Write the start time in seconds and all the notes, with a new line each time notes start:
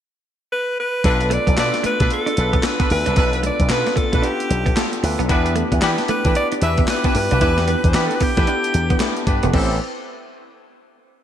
0.52 B4
0.80 B4
1.04 B1 B3 D4 F4 A4 B4, kick, closed hi-hat
1.21 muted clean electric guitar stroke, closed hi-hat
1.30 A3 D5, closed hi-hat
1.47 B1 B3, kick, closed hi-hat
1.57 B2 B3 D4 F4 A4 B4 D5, muted clean electric guitar stroke, snare, clap, closed hi-hat
1.74 snare, closed hi-hat
1.84 A3 B4, muted slap bass stroke, closed hi-hat
2.00 B2 A3 D4 F4 A4 B4, kick, closed hi-hat
2.10 B3 D4 F4 G#4 A4, closed hi-hat
2.18 A4
2.26 D4, closed hi-hat
2.37 B1 D4 F4 A4 B4, muted clean electric guitar stroke, closed hi-hat
2.53 B3, kick, closed hi-hat
2.63 B3 D4 F4 A4 B4, snare, clap, closed hi-hat
2.80 B3 D4 F4 A4 B4, kick, closed hi-hat
2.90 D2 B4, muted clean electric guitar stroke, open hi-hat
3.06 C2 D4 F4 A4 B4, closed hi-hat
3.16 B1 B3 D4 F4 A4 B4, kick, closed hi-hat
3.33 muted clean electric guitar stroke, closed hi-hat
3.43 A3 D5, closed hi-hat
3.60 B1, kick, closed hi-hat
3.69 B2 B3 C#4 D4 F4 A4 B4, muted clean electric guitar stroke, snare, clap, closed hi-hat
3.77 D4
3.87 snare, closed hi-hat
3.96 A3 A4, muted slap bass stroke, kick, closed hi-hat
4.12 B2 A3 D4 F4 A4 B4, kick, closed hi-hat
4.22 B3 D4 F4 G4 A4, closed hi-hat
4.40 closed hi-hat
4.50 B1, muted clean electric guitar stroke, closed hi-hat
4.66 B3, kick, closed hi-hat
4.75 A3 B3 D4 F4 A4, snare, clap, closed hi-hat
4.93 closed hi-hat
5.02 D2 D4 F4 A4 B4, muted clean electric guitar stroke, open hi-hat
5.19 B1 B3, closed hi-hat
5.29 E2 B3 D4 E4 G4 B4, kick, closed hi-hat
5.46 muted clean electric guitar stroke, closed hi-hat
5.56 A3, closed hi-hat
5.72 E2 B3, kick, closed hi-hat
5.81 E3 B3 D4 E4 G4 B4, muted clean electric guitar stroke, snare, clap, closed hi-hat
5.98 snare, closed hi-hat
6.08 A3 B4, muted slap bass stroke, closed hi-hat
6.24 E3 A3 D4 E4 G4 B4, kick, closed hi-hat
6.35 B3 D4 E4 G4 D5, closed hi-hat
6.52 D4, closed hi-hat
6.61 E2 D4 E4 G4 B4 E5, muted clean electric guitar stroke, closed hi-hat
6.78 B3, kick, closed hi-hat
6.88 B3 D4 E4 F4 B4, snare, clap, closed hi-hat
6.96 G4
7.04 B3 D4 E4 G4 B4, kick, closed hi-hat
7.15 G2 B4, muted clean electric guitar stroke, open hi-hat
7.30 B1 D4 E4 G4 B4, closed hi-hat
7.40 E2 B3 D4 E4 G4 B4, kick, closed hi-hat
7.58 muted clean electric guitar stroke, snare, closed hi-hat
7.68 B3, closed hi-hat
7.84 E2, kick, closed hi-hat
7.89 C5
7.94 E3 B3 D4 E4 G4 B4, muted clean electric guitar stroke, snare, clap, closed hi-hat
8.06 A4
8.11 closed hi-hat
8.15 B4
8.20 B3 G4, muted slap bass stroke, kick, open hi-hat
8.36 E3 A3 D4 E4 G4 B4, kick, closed hi-hat
8.47 B3 D4 E4 G4, closed hi-hat
8.55 A4
8.64 closed hi-hat
8.74 E2, muted clean electric guitar stroke, closed hi-hat
8.90 B3, kick, closed hi-hat
9.00 A3 B3 D4 E4 G4, snare, clap, closed hi-hat
9.17 closed hi-hat
9.27 G2 D4 E4 G4 B4, muted clean electric guitar stroke, kick, closed hi-hat
9.43 E1 B3, closed hi-hat
9.53 A1 B3 C4 E4 G4 A4 C5, kick, crash